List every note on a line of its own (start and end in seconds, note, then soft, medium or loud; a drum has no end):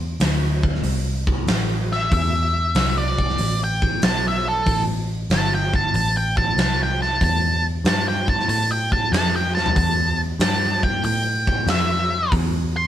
0.00 0.18 E2 medium
0.20 0.82 D2 medium
0.20 snare loud
0.20 open hi-hat medium
0.63 kick medium
0.75 snare soft
0.83 1.46 C2 medium
0.83 open hi-hat medium
1.27 kick medium
1.47 2.09 A1 medium
1.47 snare loud
1.47 open hi-hat medium
1.92 2.12 E5 loud
1.92 snare soft
2.11 2.73 E2 medium
2.11 2.95 E5 medium
2.11 kick loud
2.11 open hi-hat soft
2.75 3.37 C2 medium
2.75 snare loud
2.75 open hi-hat medium
2.98 3.59 D5 medium
3.19 kick medium
3.29 snare soft
3.38 4.01 A1 medium
3.38 open hi-hat medium
3.64 4.03 G5 loud
3.82 kick medium
4.02 4.65 B1 medium
4.02 4.24 A5 medium
4.02 snare loud
4.02 open hi-hat medium
4.28 4.47 E5 medium
4.48 4.81 A4 loud
4.66 5.28 A1 medium
4.66 kick medium
4.66 open hi-hat medium
5.30 5.92 G1 medium
5.30 5.52 A5 loud
5.30 snare loud
5.30 open hi-hat medium
5.55 5.74 G5 medium
5.74 5.95 A5 medium
5.74 kick medium
5.94 6.56 A1 medium
5.94 6.15 A5 medium
5.94 open hi-hat medium
6.17 6.37 G5 loud
6.37 6.57 A5 loud
6.37 kick medium
6.57 7.19 C2 medium
6.57 6.80 A5 loud
6.57 snare medium
6.57 open hi-hat soft
6.83 7.02 G5 medium
7.02 7.22 A5 loud
7.02 snare soft
7.21 7.83 E2 medium
7.21 7.65 A5 loud
7.21 kick medium
7.21 open hi-hat soft
7.84 8.47 G2 medium
7.84 8.07 A5 loud
7.84 snare loud
7.84 open hi-hat medium
8.08 8.28 G5 loud
8.28 8.48 A5 medium
8.28 kick medium
8.40 snare soft
8.48 9.11 A2 medium
8.48 8.70 A5 medium
8.48 open hi-hat medium
8.72 8.92 G5 medium
8.92 9.12 A5 medium
8.92 kick medium
9.12 9.74 F2 medium
9.12 9.34 A5 loud
9.12 snare loud
9.12 open hi-hat medium
9.36 9.54 G5 medium
9.55 9.76 A5 medium
9.55 snare medium
9.66 floor tom medium
9.76 10.38 E2 medium
9.76 10.19 A5 loud
9.76 kick loud
9.76 open hi-hat medium
10.39 11.02 G2 medium
10.39 10.83 A5 loud
10.39 snare loud
10.39 open hi-hat medium
10.83 11.04 G5 medium
10.83 kick medium
11.04 11.66 A2 medium
11.04 11.67 G5 medium
11.04 open hi-hat medium
11.47 kick medium
11.67 12.29 F2 medium
11.67 12.31 E5 loud
11.67 snare loud
11.67 open hi-hat medium
12.32 12.87 E2 medium
12.32 kick medium
12.32 open hi-hat medium
12.77 12.87 C6 loud